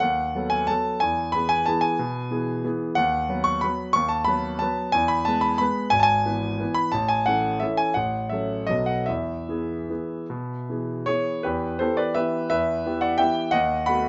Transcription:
grand piano
0.00 D#2 F#5
0.35 F#3 B3 A4
0.50 G#5
0.67 F#3 B3 A4 A5
1.00 E2 G#5
1.32 E3 B3 G#4 B5
1.49 G#5
1.66 E3 B3 G#4 A5
1.81 G#5
1.99 B2
2.31 E3 B3 G#4
2.64 E3 B3 G#4
2.95 D#2 F#5
3.29 F#3 B3 B4
3.44 C#6
3.61 F#3 B3 B4 B5
3.93 D#2 C#6
4.09 A5
4.25 F#3 B3 B4 B5
4.59 F#3 B3 B4 A5
4.92 E2 G#5
5.08 B5
5.25 G#3 B3 B4 A5
5.41 B5
5.58 G#3 B3 B4 B5
5.90 G#1 G#5
6.00 G#5 A5
6.26 E3 B3 B4
6.59 E3 B3 B4
6.74 B5
6.92 A1 A5
7.09 G#5
7.26 E3 C#4 A4 F#5
7.60 E3 C#4 A4 E5
7.77 G#5
7.94 A1 F#5
8.29 F#3 C#4 A4 E5
8.67 B1 F#3 B3 A4 D#5
8.86 F#5
9.06 E2 E5
9.49 E3 B3 G#4
9.90 E3 B3 G#4
10.30 B2
10.70 E3 B3 G#4
11.06 E3 B3 G#4 C#5
11.43 E2 G4 B4
11.79 E3 B3 G4 A4 C5
11.97 B4 D5
12.15 E3 B3 G4 B4 E5
12.50 E2 B4 E5
12.86 E3 B3 G4
13.01 D5 F#5
13.18 E3 B3 G4 E5 G5
13.51 D#2 D#5 F#5
13.86 A3 B3 F#4 F#5 B5

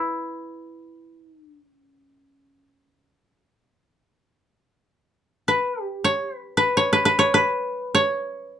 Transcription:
koto
Already playing: E4 B4 C#5
1.23 D#4
1.46 D4
1.69 C#4
5.48 B4
5.83 G4
6.04 C#5
6.35 B4
6.57 B4
6.77 C#5
6.93 B4
7.05 B4
7.19 C#5
7.34 B4
7.95 C#5

